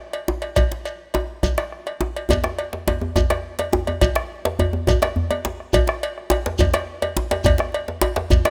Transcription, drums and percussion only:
0.13 cowbell, djembe slap
0.28 djembe slap, djembe tone
0.42 bombo rim, cowbell
0.56 bombo rim, bombo low, cowbell, djembe slap, djembe bass, shekere
0.72 djembe slap
0.85 cowbell, shekere
1.14 cowbell, djembe slap, djembe tone
1.43 bombo low, cowbell, djembe slap, djembe bass, shekere
1.58 bombo rim, cowbell, djembe slap
1.72 bombo rim
1.86 bombo rim, cowbell, djembe slap
2.01 bombo rim, djembe slap, djembe tone
2.16 cowbell
2.29 bombo low, cowbell, djembe tone, djembe bass, shekere
2.44 bombo rim, djembe slap
2.59 cowbell
2.73 bombo rim, djembe slap
2.88 cowbell, djembe slap, djembe tone
3.01 djembe tone
3.16 bombo rim, bombo low, cowbell, djembe tone, djembe bass, shekere
3.30 bombo rim, cowbell, djembe slap
3.59 cowbell, djembe slap
3.73 djembe slap, djembe tone
3.87 bombo rim, cowbell, djembe tone
4.01 bombo low, cowbell, djembe bass, shekere
4.15 bombo rim, djembe slap
4.45 bombo rim, djembe slap
4.59 cowbell, djembe tone, djembe bass
4.73 djembe tone
4.87 bombo rim, bombo low, cowbell, djembe slap, djembe bass, shekere
5.02 bombo rim, cowbell, djembe slap
5.16 djembe bass
5.31 cowbell, djembe slap, djembe tone
5.45 djembe slap
5.60 bombo rim
5.73 bombo low, cowbell, djembe bass, shekere
5.87 bombo rim, djembe slap
6.03 cowbell
6.18 bombo rim
6.30 cowbell, djembe slap, djembe tone
6.46 djembe slap
6.58 bombo rim, bombo low, cowbell, djembe bass, shekere
6.74 bombo rim, cowbell, djembe slap
7.02 cowbell, djembe slap
7.17 djembe slap, djembe tone
7.31 bombo rim, cowbell, djembe slap
7.44 bombo rim, bombo low, cowbell, djembe slap, djembe bass, shekere
7.58 bombo rim, djembe slap
7.72 cowbell, djembe slap
7.88 djembe slap
8.01 cowbell, djembe slap, djembe tone
8.16 djembe slap
8.30 bombo low, cowbell, djembe bass, shekere
8.45 bombo rim, cowbell, djembe slap

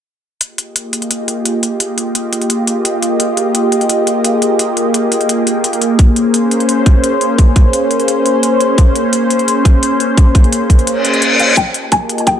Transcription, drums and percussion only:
0.41 closed hi-hat
0.58 closed hi-hat
0.76 closed hi-hat
0.93 closed hi-hat
1.02 closed hi-hat
1.11 closed hi-hat
1.28 closed hi-hat
1.45 closed hi-hat
1.63 closed hi-hat
1.80 closed hi-hat
1.98 closed hi-hat
2.15 closed hi-hat
2.33 closed hi-hat
2.42 closed hi-hat
2.50 closed hi-hat
2.67 closed hi-hat
2.85 closed hi-hat
3.02 closed hi-hat
3.20 closed hi-hat
3.37 closed hi-hat
3.55 closed hi-hat
3.72 closed hi-hat
3.81 closed hi-hat
3.89 closed hi-hat
4.07 closed hi-hat
4.25 closed hi-hat
4.42 closed hi-hat
4.59 closed hi-hat
4.77 closed hi-hat
4.94 closed hi-hat
5.12 closed hi-hat
5.21 closed hi-hat
5.29 closed hi-hat
5.47 closed hi-hat
5.64 closed hi-hat
5.73 closed hi-hat
5.82 closed hi-hat
5.99 kick, closed hi-hat
6.16 closed hi-hat
6.34 closed hi-hat
6.51 closed hi-hat
6.60 closed hi-hat
6.69 closed hi-hat
6.86 kick, closed hi-hat
7.04 closed hi-hat
7.21 closed hi-hat
7.38 kick, closed hi-hat
7.56 kick, closed hi-hat
7.73 closed hi-hat
7.91 closed hi-hat
8.00 closed hi-hat
8.08 closed hi-hat
8.26 closed hi-hat
8.43 closed hi-hat
8.61 closed hi-hat
8.78 kick, closed hi-hat
8.96 closed hi-hat
9.13 closed hi-hat
9.30 closed hi-hat
9.39 closed hi-hat
9.48 closed hi-hat
9.65 kick, closed hi-hat
9.83 closed hi-hat
10.00 closed hi-hat
10.17 kick, closed hi-hat
10.35 kick, closed hi-hat
10.44 closed hi-hat
10.53 closed hi-hat
10.70 kick, closed hi-hat
10.79 closed hi-hat
10.87 closed hi-hat
11.05 closed hi-hat
11.14 closed hi-hat
11.22 closed hi-hat
11.39 closed hi-hat
11.57 kick, closed hi-hat
11.74 closed hi-hat
11.92 kick, closed hi-hat
12.09 closed hi-hat
12.18 closed hi-hat
12.27 kick, closed hi-hat

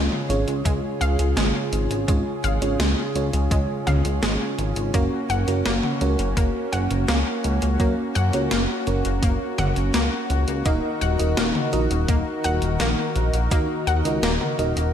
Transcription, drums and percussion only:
0.12 mid tom
0.30 closed hi-hat
0.48 closed hi-hat
0.65 kick, closed hi-hat
1.01 closed hi-hat
1.19 closed hi-hat
1.37 snare, closed hi-hat
1.73 closed hi-hat
1.91 closed hi-hat
2.08 kick, closed hi-hat
2.44 closed hi-hat
2.62 closed hi-hat
2.80 snare, closed hi-hat
3.16 closed hi-hat
3.33 closed hi-hat
3.51 kick, closed hi-hat
3.87 closed hi-hat, mid tom
4.05 closed hi-hat
4.23 snare, closed hi-hat
4.59 closed hi-hat
4.76 closed hi-hat
4.94 kick, closed hi-hat
5.30 closed hi-hat
5.48 closed hi-hat
5.66 snare, closed hi-hat
5.83 mid tom
6.01 closed hi-hat
6.19 closed hi-hat
6.37 kick, closed hi-hat
6.73 closed hi-hat
6.91 closed hi-hat
7.08 snare, closed hi-hat
7.44 closed hi-hat
7.62 closed hi-hat
7.80 kick, closed hi-hat
8.16 closed hi-hat
8.33 closed hi-hat
8.51 snare, closed hi-hat
8.87 closed hi-hat
9.05 closed hi-hat
9.23 kick, closed hi-hat
9.58 closed hi-hat, mid tom
9.76 closed hi-hat
9.94 snare, closed hi-hat
10.30 closed hi-hat
10.48 closed hi-hat
10.66 kick, closed hi-hat
11.02 closed hi-hat
11.20 closed hi-hat
11.37 snare, closed hi-hat
11.55 mid tom
11.73 closed hi-hat
11.91 closed hi-hat
12.08 kick, closed hi-hat
12.44 closed hi-hat
12.62 closed hi-hat
12.80 snare, closed hi-hat
13.16 closed hi-hat
13.34 closed hi-hat
13.51 kick, closed hi-hat
13.87 closed hi-hat
14.05 closed hi-hat
14.23 snare, closed hi-hat
14.41 mid tom
14.59 closed hi-hat
14.77 closed hi-hat

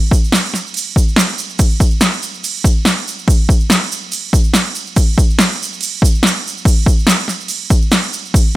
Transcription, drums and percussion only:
0.11 kick, shaker
0.24 shaker
0.32 snare, crash, shaker
0.46 shaker
0.54 snare, shaker
0.67 shaker
0.74 crash, shaker
0.96 kick, shaker
1.08 shaker
1.16 snare, crash, shaker
1.29 shaker
1.38 shaker
1.49 shaker
1.59 kick, crash, shaker
1.70 shaker
1.80 kick, shaker
1.90 shaker
2.01 snare, crash, shaker
2.13 shaker
2.22 shaker
2.34 shaker
2.44 crash, shaker
2.56 shaker
2.64 kick, shaker
2.85 snare, crash, shaker
2.98 shaker
3.08 shaker
3.19 shaker
3.28 kick, crash, shaker
3.49 kick, shaker
3.60 shaker
3.70 snare, crash, shaker
3.83 shaker
3.92 shaker
4.12 crash, shaker
4.33 kick, shaker
4.44 shaker
4.54 snare, crash, shaker
4.65 shaker
4.75 shaker
4.87 shaker
4.96 kick, crash, shaker
5.18 kick, shaker
5.30 shaker
5.39 snare, crash, shaker
5.52 shaker
5.63 shaker
5.73 shaker
5.81 crash, shaker
6.02 kick, shaker
6.15 shaker
6.23 snare, crash, shaker
6.37 shaker
6.47 shaker
6.57 shaker
6.65 kick, crash, shaker
6.86 kick, shaker
6.99 shaker
7.07 snare, crash, shaker
7.28 snare, shaker
7.40 shaker
7.48 crash, shaker
7.70 kick, shaker
7.82 shaker
7.92 snare, crash, shaker
8.03 shaker
8.13 shaker
8.25 shaker
8.34 kick, crash, shaker

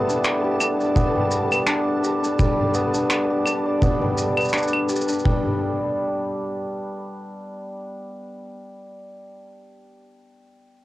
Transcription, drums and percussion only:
0.10 shaker
0.24 finger snap, shaker
0.60 claves, shaker
0.81 shaker
0.96 kick, shaker
1.31 shaker
1.52 claves, shaker
1.67 finger snap, shaker
2.04 shaker
2.24 shaker
2.39 kick, shaker
2.74 shaker
2.94 shaker
3.10 finger snap, shaker
3.46 claves, shaker
3.82 kick, shaker
4.18 shaker
4.37 claves, shaker
4.41 shaker
4.45 shaker
4.49 shaker
4.53 finger snap, shaker
4.58 shaker
4.63 shaker
4.68 shaker
4.73 claves
4.89 shaker
4.96 shaker
5.01 shaker
5.08 shaker
5.13 shaker
5.19 shaker
5.25 kick

